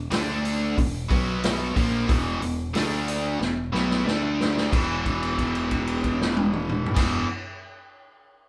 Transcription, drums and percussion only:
0.11 snare, open hi-hat
0.45 open hi-hat
0.78 kick, open hi-hat
1.11 kick, open hi-hat
1.44 snare, open hi-hat
1.76 kick, open hi-hat
2.09 kick, open hi-hat
2.42 open hi-hat
2.75 snare, open hi-hat
3.08 open hi-hat
3.41 snare
3.74 snare
3.91 snare
4.08 snare
4.41 snare
4.57 snare
4.73 kick, crash
5.06 kick, crash
5.23 crash
5.39 kick, crash
5.55 crash
5.71 kick, crash
5.87 crash
6.04 kick, crash
6.21 snare
6.37 high tom
6.53 mid tom
6.69 mid tom
6.86 floor tom
6.96 kick, snare, crash

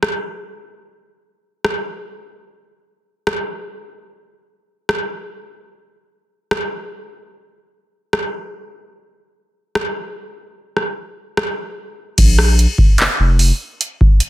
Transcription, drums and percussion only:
0.03 cross-stick
1.65 cross-stick
3.27 cross-stick
4.89 cross-stick
6.51 cross-stick
8.13 cross-stick
9.75 cross-stick
10.77 cross-stick
11.37 cross-stick
12.18 kick, closed hi-hat, crash
12.38 cross-stick
12.59 closed hi-hat
12.78 kick
12.98 clap, closed hi-hat
13.39 open hi-hat
13.81 closed hi-hat
14.01 kick
14.20 closed hi-hat

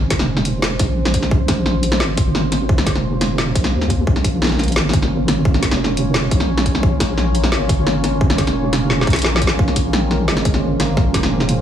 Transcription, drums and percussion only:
0.10 kick, snare, closed hi-hat
0.19 snare
0.37 snare
0.45 closed hi-hat
0.62 snare
0.79 kick, snare, closed hi-hat
1.05 snare
1.14 kick, closed hi-hat
1.22 snare
1.31 kick
1.48 kick, snare, closed hi-hat
1.66 snare
1.83 closed hi-hat
1.92 snare
2.00 snare
2.17 kick, closed hi-hat
2.35 snare
2.52 snare, closed hi-hat
2.69 kick
2.78 snare
2.86 kick, snare, closed hi-hat
2.95 snare
3.21 snare, closed hi-hat
3.38 snare
3.55 kick, closed hi-hat
3.64 snare
3.81 snare
3.90 kick, closed hi-hat
4.07 kick
4.16 snare
4.24 kick, closed hi-hat
4.42 snare
4.44 snare
4.47 snare
4.49 snare
4.52 snare
4.54 snare
4.57 snare
4.59 snare, closed hi-hat
4.64 closed hi-hat
4.68 closed hi-hat
4.72 closed hi-hat
4.76 snare
4.89 snare
4.93 kick, closed hi-hat
5.02 snare
5.28 snare, closed hi-hat
5.45 kick
5.54 snare
5.62 kick, snare, closed hi-hat
5.71 snare
5.84 snare
5.97 closed hi-hat
6.14 snare
6.31 kick, closed hi-hat
6.40 snare
6.58 snare
6.66 kick, closed hi-hat
6.75 snare
6.83 kick
7.00 kick, snare, closed hi-hat
7.18 snare
7.35 closed hi-hat
7.44 snare
7.52 snare
7.69 kick, closed hi-hat
7.87 snare
8.04 snare, closed hi-hat
8.21 kick
8.30 snare
8.38 kick, snare, closed hi-hat
8.47 snare, closed hi-hat
8.73 snare, closed hi-hat
8.90 snare
9.01 snare
9.07 kick, closed hi-hat
9.10 snare, closed hi-hat
9.13 closed hi-hat
9.16 closed hi-hat
9.19 closed hi-hat
9.22 snare, closed hi-hat
9.36 snare
9.42 kick, closed hi-hat
9.47 snare
9.59 kick
9.68 snare
9.76 kick, closed hi-hat
9.93 snare
10.11 snare
10.28 snare
10.37 snare
10.45 kick, closed hi-hat
10.54 snare
10.80 snare, closed hi-hat
10.97 kick, snare
11.14 kick, snare, closed hi-hat
11.23 snare
11.40 snare
11.49 closed hi-hat

